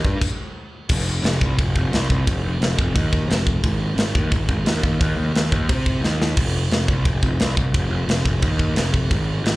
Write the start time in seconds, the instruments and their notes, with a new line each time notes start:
0.05 picked electric bass G2, kick
0.21 kick, crash
0.89 picked electric bass F1, kick, crash
1.22 picked electric bass F1, snare, crash
1.41 picked electric bass C2, kick
1.58 picked electric bass F1, kick, crash
1.75 picked electric bass F1, kick
1.92 picked electric bass C2, snare, crash
2.09 picked electric bass C2, kick
2.27 picked electric bass F1, kick, crash
2.43 picked electric bass F1
2.59 picked electric bass F1, snare, crash
2.78 picked electric bass F1, kick
2.95 picked electric bass D#2, kick, crash
3.13 kick
3.27 picked electric bass F1, crash
3.31 snare
3.47 kick
3.64 picked electric bass G#1, kick, crash
3.95 picked electric bass G#1, snare, crash
4.15 picked electric bass D#2, kick
4.31 picked electric bass G#1, kick, crash
4.48 picked electric bass G#1, kick
4.65 picked electric bass D#2, snare, crash
4.83 picked electric bass D#2, kick
5.00 picked electric bass D#2, kick, crash
5.16 picked electric bass D#2
5.34 picked electric bass D#2, snare, crash
5.52 picked electric bass D#2, kick
5.69 picked electric bass C3, kick, crash
5.86 kick
6.01 picked electric bass D#2, snare
6.22 snare
6.37 picked electric bass F1, kick, crash
6.70 picked electric bass F1, snare, crash
6.88 picked electric bass C2, kick
7.05 picked electric bass F1, kick, crash
7.23 picked electric bass F1, kick
7.39 picked electric bass C2, snare, crash
7.57 picked electric bass C2, kick
7.74 picked electric bass F1, kick, crash
7.90 picked electric bass F1
8.06 picked electric bass F1, snare, crash
8.25 picked electric bass F1, kick
8.42 picked electric bass D#2, kick, crash
8.59 kick
8.76 picked electric bass F1, snare, crash
8.94 kick
9.10 picked electric bass G#1, kick, crash
9.43 picked electric bass G#1, snare, crash